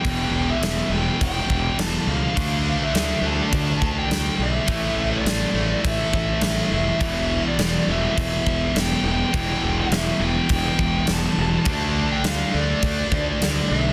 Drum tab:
CC |x-x-x-x-|x-x-x-x-|x-x-x-x-|x-x-x-x-|
SD |--o---o-|--o---o-|--o---o-|--o---o-|
BD |o---oo--|o---oo--|o---oo--|o---oo--|

CC |x-x-x-x-|x-x-x-x-|
SD |--o---o-|--o---o-|
BD |o---oo--|o---oo--|